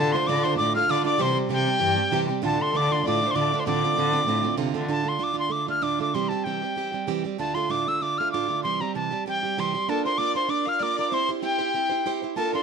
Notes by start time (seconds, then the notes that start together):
Already playing: D2 A2 D3 A4 A5
0.00 D3 A3 D4 F4
0.12 D3 A3 D4 F4 C5 C6
0.27 D2 A2 D3 A3 D4 F4 D5 D6
0.44 D3 A3 D4 F4 C5 C6
0.57 A2 D3 A3 D4 F4 D5 D6
0.75 D3 A3 D4 F4 F5 F6
0.88 D2 A2 D3 A3 D4 F4 D5 D6
1.04 D3 A3 D4 F4 D5 D6
1.18 C3 E3 G3 C4 G4 C5
1.22 C6
1.33 G3 C4 G4
1.49 C3 E3 G3 C4 G4 G5
1.66 G3 C4 G4
1.79 G2 E3 G3 C4 G4
1.96 G3 C4 G4
2.11 C3 E3 G3 C4 G4
2.28 G3 C4 G4
2.42 D2 A2 D3 A3 D4 F4 A4 A5
2.59 D3 A3 D4 F4 C6
2.74 D2 A2 D3 A3 D4 F4 D5 D6
2.91 D3 A3 D4 F4 C6
3.04 A2 D3 A3 D4 F4 D5 D6
3.21 D3 A3 D4 F4
3.27 C5 C6
3.34 D2 A2 D3 A3 D4 F4 D5 D6
3.52 D3 A3 D4 F4
3.59 C5 C6
3.65 D2 A2 D3 A3 C4 F4 D5 D6
3.83 D3 A3 C4 F4
3.97 D2 A2 D3 A3 C4 F4
4.12 D3 A3 C4 F4
4.27 A2 D3 A3 C4 F4
4.43 D3 A3 C4 F4
4.57 D2 A2 C3 D3 A3 C4 F4
4.74 D3 A3 C4 F4
4.87 D2 A2 D3 A3 D4 F4 A5
5.03 D3 A3 D4 F4
5.08 C6
5.18 D2 A2 D3 A3 D4 F4
5.23 D6
5.33 D3 A3 D4 F4
5.39 C6
5.48 D3 A3 D4 F4 D6
5.66 D3 A3 D4 F4 F6
5.81 D2 A2 D3 A3 D4 F4 D6
5.99 D3 A3 D4 F4 D6
6.14 C3 E3 G3 C4 G4 C6
6.29 G3 C4 G4 A5
6.44 C3 E3 G3 C4 G4 G5
6.62 G3 C4 G4
6.76 E3 G3 C4 G4
6.92 G3 C4 G4
7.07 C3 E3 G3 C4 G4
7.24 G3 C4 G4
7.38 D2 A2 D3 A3 D4 F4 A5
7.54 D3 A3 D4 F4 C6
7.69 D2 A2 D3 A3 D4 F4 D6
7.86 D3 A3 D4 F4 E6
7.98 D3 A3 E6
8.02 D4 F4 D6
8.18 D3 A3 D4 F4 F6
8.32 D2 A2 D3 A3 D4 F4 D6
8.48 D3 A3 D4 F4
8.63 C3 E3 G3 C4 G4 C6
8.80 G3 C4 G4 A#5
8.95 C3 E3 G3 C4 G4 A5
9.11 G3 C4 G4
9.26 E3 G3 C4 G4 G5
9.43 G3 C4 G4
9.57 C3 E3 G3 C4 G4 C6
9.74 G3 C4 G4
9.88 A#3 D4 F4 A4 A#4 A5
10.05 D4 F4 A#4 C5 C6
10.18 A#3 D4 F4 A#4 D5 D6
10.34 D4 F4 A#4 C5 C6
10.48 A#3 D4 F4 A#4 D5 D6
10.66 D4 F4 A#4 F5 F6
10.80 A#3 D4 F4 A#4 D5 D6
10.95 A#4 D5
11.00 D4 F4 D6
11.11 C4 E4 G4 C5 C6
11.29 E4 G4 C5
11.41 C4 E4 G4 C5 G5
11.58 E4 G4 C5
11.74 C4 E4 G4 C5
11.90 E4 G4 C5
12.06 C4 E4 G4 C5
12.22 E4 G4 C5
12.36 A#3 D4 F4 A4 A#4 A5
12.53 D4 F4 A#4 C6